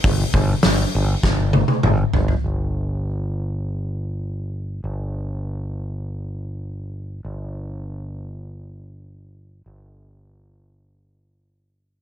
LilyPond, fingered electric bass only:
\new Staff \with { instrumentName = "Fingered electric bass" } { \clef bass \time 4/4 \key c \dorian \tempo 4 = 100 g,,8 g,,8 g,,8 g,,8 g,,4 g,,8 g,,8 | g,,1 | g,,1 | g,,1 |
g,,1 | }